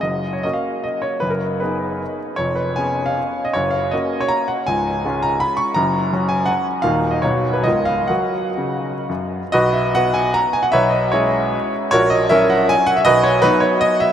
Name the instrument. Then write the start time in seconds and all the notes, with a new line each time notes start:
grand piano
0.01 F#1 F#2 D#5
0.33 C#5
0.43 A#3 C#4 F#4 D#5
0.53 F5
0.84 D#5
1.02 C#5
1.20 F#1 F#2 B4
1.30 A#4
1.60 B3 D#4 G#4 B4
2.36 F1 F2 C#5
2.55 B4
2.76 B3 C#4 G#4 G#5
3.06 F5
3.45 D#5
3.53 F#1 F#2 C#5
3.71 F5
3.91 A#3 C#4 F#4 D#5
4.21 C#5
4.28 A#5
4.48 F#5
4.67 C#1 C#2 G#5
5.05 G#3 C#4 F4
5.23 A#5
5.40 B5
5.57 C#6
5.74 F#1 F#2 A#5
6.13 F#3 C#4 F#4
6.29 G#5
6.46 F#5
6.82 D#1 D#2 A#3 D#4 F#4 F5
7.11 D#5
7.22 B0 B1 B3 D#4 F#4 C#5
7.53 B4
7.64 C#1 C#2 B3 F4 A#4 D#5
7.85 F5
8.07 F#3 F#4 A#4 F#5
8.58 C#3
9.09 F#2
9.52 B1 F#4 B4 D#5
9.73 E5
9.95 B3 F#4 B4 D#5 F#5
10.14 G#5
10.34 A#5
10.53 G#5
10.63 F#5
10.72 B1 B4 C#5 E5
10.90 D#5
11.12 G#3 C#4 E4 G#4 C#5
11.91 A#1 F#4 A#4 C#5
12.10 D#5
12.29 F#3 C#4 E4 A#4 C#5 E5
12.50 F#5
12.69 G#5
12.87 F#5
12.97 E5
13.05 B1 F#4 B4 D#5
13.23 C#5
13.42 F#3 B3 D#4 F#4 B4
13.60 C#5
13.81 D#5
14.00 E5